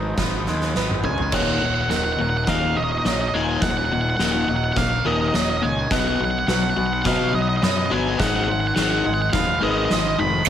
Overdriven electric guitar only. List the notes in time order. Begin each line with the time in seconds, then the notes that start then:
1.33 D#2 A#2 D#3
1.62 D#2 A#2
1.90 D#2 A#2
2.19 D#2 A#2
2.47 D#2 A#2 D#3
2.77 D#2 A#2
3.05 D#2 A#2
3.35 D#2 A#2 D#3
3.63 D#2 A#2
3.92 D#2 A#2
4.19 D#2 A#2 D#3
4.48 D#2 A#2
4.76 D#2 A#2
5.05 D#2 A#2 D#3
5.34 D#2 A#2
5.62 D#2 A#2
5.91 B2 F#3 B3
6.20 B2 F#3
6.48 B2 F#3
6.76 B2 F#3
7.04 B2 F#3 B3
7.33 B2 F#3
7.62 B2 F#3
7.90 B2 F#3 B3
8.18 G#2 D#3 G#3
8.48 G#2 D#3
8.76 G#2 D#3 G#3
9.05 G#2 D#3
9.33 G#2 D#3
9.61 G#2 D#3 G#3
9.91 G#2 D#3
10.19 G#2 D#3